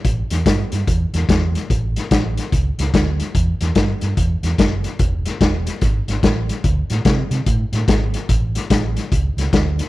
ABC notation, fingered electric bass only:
X:1
M:4/4
L:1/8
Q:"Swing" 1/4=146
K:D
V:1 name="Fingered electric bass" clef=bass
A,,, E,, G,, G,, E,, E,, E,,2 | A,,,2 A,,,2 C,, C,, D,,2 | E,, E,, G,, G,, E,, E,, F,,,2 | E,,,2 E,,,2 ^G,,, G,,, A,,,2 |
D,, A,, =C, C, A,, A,, ^G,,,2 | A,,,2 A,,,2 C,, C,, D,,2 |]